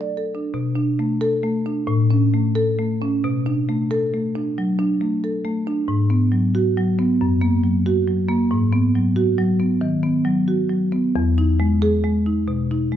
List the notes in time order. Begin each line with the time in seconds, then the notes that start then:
Already playing: A4
0.01 D5
0.17 A4
0.35 D4
0.54 B2
0.76 D4
0.99 A3
1.21 A4
1.44 A3
1.66 D4
1.87 A2
2.10 C#4
2.34 A3
2.55 A4
2.79 A3
3.02 C#4
3.24 B2
3.46 D4
3.69 A3
3.91 A4
4.14 A3
4.35 D4
4.58 F#3
4.79 D4
5.01 A3
5.24 A4
5.45 A3
5.67 D4
5.88 G#2
6.10 B3
6.32 F#3
6.55 F#4
6.77 F#3
6.99 B3
7.21 F#2
7.41 A#3
7.64 F#3
7.86 F#4
8.07 F#3
8.29 A#3
8.51 G#2
8.73 B3
8.95 F#3
9.16 F#4
9.38 F#3
9.60 B3
9.81 D#3
10.03 B3
10.25 F#3
10.48 F#4
10.70 F#3
10.92 B3
11.16 E2
11.38 D#4
11.60 G#3
11.82 G#4
12.04 G#3
12.26 D#4
12.48 B2
12.71 D#4
12.92 G#3